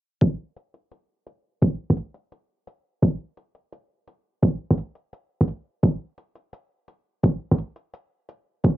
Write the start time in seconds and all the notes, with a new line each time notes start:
0.21 kick, closed hi-hat
0.56 closed hi-hat
0.74 closed hi-hat
0.92 closed hi-hat
1.27 closed hi-hat
1.62 kick, closed hi-hat
1.90 kick
1.97 closed hi-hat
2.14 closed hi-hat
2.32 closed hi-hat
2.67 closed hi-hat
3.02 kick, closed hi-hat
3.37 closed hi-hat
3.55 closed hi-hat
3.72 closed hi-hat
4.08 closed hi-hat
4.42 kick, closed hi-hat
4.71 kick
4.78 closed hi-hat
4.95 closed hi-hat
5.13 closed hi-hat
5.41 kick
5.48 closed hi-hat
5.83 kick, closed hi-hat
6.18 closed hi-hat
6.35 closed hi-hat
6.53 closed hi-hat
6.88 closed hi-hat
7.23 kick, closed hi-hat
7.51 kick
7.58 closed hi-hat
7.76 closed hi-hat
7.94 closed hi-hat
8.29 closed hi-hat
8.64 kick, closed hi-hat